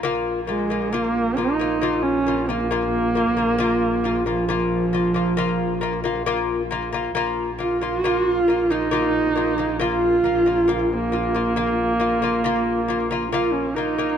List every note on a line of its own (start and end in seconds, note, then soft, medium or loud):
0.02 7.14 A#1 medium
0.02 0.39 A#3 loud
0.02 0.40 F4 loud
0.47 0.94 G#3 medium
0.47 0.66 A#3 medium
0.47 0.66 F4 medium
0.70 0.88 A#3 medium
0.70 0.89 F4 medium
0.92 1.38 A#3 medium
0.92 1.28 A#3 medium
0.92 1.29 F4 medium
1.37 1.55 A#3 medium
1.37 2.04 D#4 medium
1.37 1.55 F4 medium
1.59 1.77 A#3 medium
1.59 1.78 F4 medium
1.82 2.17 A#3 medium
1.82 2.18 F4 medium
2.02 2.50 C#4 medium
2.27 2.44 A#3 medium
2.27 2.45 F4 medium
2.48 4.27 A#3 medium
2.48 2.66 A#3 medium
2.48 2.67 F4 medium
2.71 3.06 A#3 medium
2.71 3.07 F4 medium
3.15 3.33 A#3 medium
3.15 3.34 F4 medium
3.37 3.55 A#3 medium
3.37 3.55 F4 medium
3.58 3.94 A#3 loud
3.58 3.95 F4 loud
4.04 4.22 A#3 medium
4.04 4.22 F4 medium
4.25 6.45 F3 medium
4.25 4.44 A#3 medium
4.25 4.44 F4 medium
4.49 4.84 A#3 medium
4.49 4.84 F4 medium
4.93 5.10 A#3 medium
4.93 5.11 F4 medium
5.14 5.32 A#3 medium
5.14 5.33 F4 medium
5.37 5.72 A#3 loud
5.37 5.73 F4 loud
5.81 5.99 A#3 medium
5.81 6.00 F4 medium
6.04 6.21 A#3 medium
6.04 6.22 F4 medium
6.26 6.61 A#3 loud
6.26 6.62 F4 loud
6.71 6.88 A#3 medium
6.71 6.89 F4 medium
6.92 7.10 A#3 medium
6.92 7.11 F4 medium
7.15 14.18 A#1 medium
7.15 7.50 A#3 loud
7.15 7.51 F4 loud
7.59 7.76 A#3 medium
7.59 7.77 F4 medium
7.59 8.72 F4 loud
7.81 7.99 A#3 medium
7.81 7.99 F4 medium
8.04 8.39 A#3 medium
8.04 8.40 F4 medium
8.48 8.65 A#3 medium
8.48 8.66 F4 medium
8.70 8.88 A#3 medium
8.70 9.82 D#4 loud
8.70 8.88 F4 medium
8.91 9.27 A#3 medium
8.91 9.28 F4 medium
9.36 9.53 A#3 medium
9.36 9.54 F4 medium
9.58 9.76 A#3 medium
9.58 9.76 F4 medium
9.79 10.15 A#3 medium
9.79 10.95 F4 loud
9.79 10.16 F4 medium
10.24 10.42 A#3 medium
10.24 10.42 F4 medium
10.46 10.64 A#3 medium
10.46 10.64 F4 medium
10.68 11.03 A#3 medium
10.68 11.04 F4 medium
10.93 13.31 A#3 medium
11.12 11.30 A#3 medium
11.12 11.31 F4 medium
11.34 11.52 A#3 medium
11.34 11.53 F4 medium
11.56 11.92 A#3 medium
11.56 11.92 F4 medium
12.00 12.18 A#3 medium
12.00 12.18 F4 medium
12.22 12.40 A#3 medium
12.22 12.41 F4 medium
12.44 12.80 A#3 medium
12.44 12.80 F4 loud
12.88 13.06 A#3 medium
12.88 13.07 F4 medium
13.11 13.28 A#3 medium
13.11 13.29 F4 medium
13.32 13.68 A#3 loud
13.32 13.55 F4 medium
13.32 13.69 F4 loud
13.53 13.76 C#4 medium
13.74 13.94 A#3 medium
13.74 14.18 D#4 medium
13.74 13.95 F4 medium
13.98 14.16 A#3 medium
13.98 14.17 F4 medium